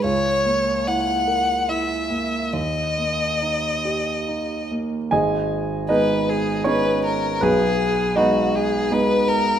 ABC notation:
X:1
M:3/4
L:1/8
Q:1/4=76
K:G#m
V:1 name="Violin"
c2 f2 e2 | d4- d z | z2 B G B A | G2 F G B A |]
V:2 name="Grand piano"
z6 | z6 | [Gdg]2 [DBd]2 [Cc]2 | [B,GB]2 [DBd]3 z |]
V:3 name="Grand piano"
C,, A, E A E A, | D,, A, D =G D A, | G,,,2 [G,B,]2 [G,B,D]2 | B,,,2 [G,B,]2 [G,B,D]2 |]